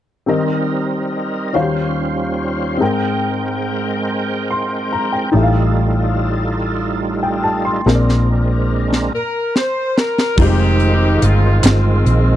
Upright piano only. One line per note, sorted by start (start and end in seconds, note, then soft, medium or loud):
0.26 1.50 D#3 soft
0.26 1.54 C4 soft
0.26 1.54 G4 soft
0.26 1.55 A#4 soft
0.26 1.55 D#5 soft
1.53 2.77 D#3 soft
1.53 2.80 C#4 medium
1.53 1.61 F#4 soft
1.53 2.81 C5 soft
1.53 2.81 F5 medium
1.61 2.84 G4 soft
2.77 4.03 G#2 soft
2.77 5.28 C4 soft
2.77 5.29 G#4 soft
2.77 5.29 A#4 soft
2.83 4.47 G5 medium
4.50 4.90 C6 soft
4.93 5.12 A#5 medium
5.13 5.52 G5 soft
5.31 6.56 A2 soft
5.31 7.81 D#4 soft
5.31 7.82 G4 soft
5.31 7.83 A4 soft
5.36 5.41 E5 soft
5.43 7.87 F5 medium
7.23 7.43 G5 soft
7.44 7.64 A5 medium
7.65 8.05 C6 soft
7.86 9.09 A#2 soft
7.86 9.12 C4 soft
7.86 9.12 G#4 soft
7.86 9.12 A#4 soft
7.86 7.93 C5 soft
7.95 9.16 D5 soft
10.36 10.44 G3 soft
10.36 12.36 D#4 soft
10.36 12.36 F4 soft
10.42 12.36 G#3 soft
10.42 12.36 C5 medium